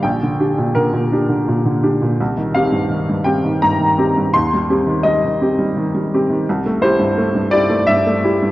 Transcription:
<<
  \new Staff \with { instrumentName = "Upright piano" } { \time 3/4 \key c \dorian \tempo 4 = 84 g''4 bes'2 | r8 f''4 g''8 bes''4 | c'''4 ees''2 | \key a \dorian r8 c''4 d''8 e''4 | }
  \new Staff \with { instrumentName = "Upright piano" } { \clef bass \time 3/4 \key c \dorian bes,,16 d16 <d' g'>16 bes,16 d16 bes,16 <d' g'>16 d16 bes,16 d16 <d' g'>16 bes,16 | c,16 ees16 <c' g'>16 g,16 ees16 g,16 <c' g'>16 ees16 g,16 ees16 <c' g'>16 g,16 | ees,16 g16 <c' g'>16 ees16 g16 ees16 <c' g'>16 g16 ees16 g16 <c' g'>16 ees16 | \key a \dorian c,16 a16 <e' g'>16 g,16 a16 g,16 <e' g'>16 a16 g,16 a16 <e' g'>16 g,16 | }
>>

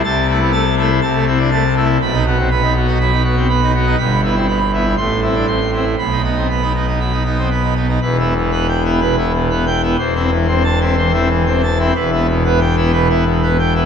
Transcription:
<<
  \new Staff \with { instrumentName = "Pipe organ" } { \time 4/4 \key e \minor \tempo 4 = 122 a''8 e'8 a''8 e'8 a''8 e'8 a''8 e'8 | b''8 fis'8 b''8 fis'8 b''8 fis'8 b''8 fis'8 | b''8 e'8 b''8 e'8 c'''8 e'8 c'''8 e'8 | b''8 dis'8 b''8 dis'8 b''8 dis'8 b''8 dis'8 |
\tuplet 3/2 { b'8 e'8 b,8 b'8 g''8 e'8 b'8 e'8 b,8 b'8 g''8 e'8 } | \tuplet 3/2 { c''8 e'8 e8 c''8 a''8 e'8 c''8 e'8 e8 c''8 a''8 e'8 } | \tuplet 3/2 { b'8 e'8 b,8 b'8 g''8 e'8 b'8 e'8 b,8 b'8 g''8 e'8 } | }
  \new Staff \with { instrumentName = "Pipe organ" } { \time 4/4 \key e \minor << { c8 a16 b16 a16 r16 a16 r16 c16 a16 c'16 d'16 a16 r16 a16 r16 | b,16 dis'16 b16 c'16 b16 dis'16 b16 dis'16 fis16 dis'16 b16 c'16 b16 dis'16 b16 dis'16 | g,8 b16 c'16 b16 r16 b16 r16 a,8 c'16 d'16 c'16 r16 c'16 r16 | b,16 dis'16 b16 c'16 b16 dis'16 b16 dis'16 fis16 dis'16 b16 c'16 b16 dis'16 b16 dis'16 |
\tuplet 3/2 { e,8 b8 r8 b8 r8 b8 b,8 b8 r8 b8 r8 b8 } | \tuplet 3/2 { e,8 c'8 r8 c'8 r8 c'8 e8 c'8 r8 c'8 r8 c'8 } | \tuplet 3/2 { e,8 b8 r8 b8 r8 b8 b,8 b8 r8 b8 r8 b8 } | } \\ { c,2 c,2 | b,,1 | g,,2 a,,2 | b,,1 |
e,,1 | e,,1 | e,,1 | } >> }
>>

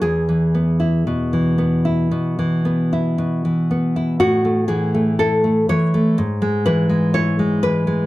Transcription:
\new Staff \with { instrumentName = "Nylon-string guitar" } { \time 4/4 \key a \major \tempo 4 = 60 << { gis'2.~ gis'8 r8 | fis'8 gis'8 a'8 cis''4 b'8 cis''8 b'8 | } \\ { e,16 e16 b16 e'16 b,16 e16 b16 e'16 b,16 e16 b16 e'16 b,16 e16 b16 e'16 | a,16 a16 e16 a16 e'16 a16 e16 a16 gis,16 gis16 e16 gis16 e'16 gis16 e16 gis16 | } >> }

